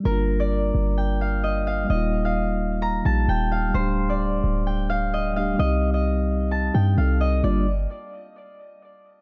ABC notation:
X:1
M:4/4
L:1/16
Q:1/4=130
K:Gm
V:1 name="Harp"
B3 d4- d g2 f2 e2 f2 | e3 f4- f b2 a2 g2 f2 | c3 d4- d g2 f2 e2 f2 | e3 e4- e a2 g2 f2 e2 |
d2 z12 z2 |]
V:2 name="Tine electric piano"
[G,B,DF]16 | [G,B,EF]8- [G,B,EF]2 [G,B,EG]6 | [G,A,DG]12- [G,A,DG]2 [G,A,DG]2 | [G,CEG]12 [G,CEA]4 |
[G,B,DF]2 z12 z2 |]
V:3 name="808-style bass" clef=bass
G,,,6 G,,,8- G,,,2 | E,,,8- E,,,2 B,,,2 E,,,4 | D,,,6 D,,,8- D,,,2 | C,,8- C,,2 G,,2 C,,4 |
G,,,4 z12 |]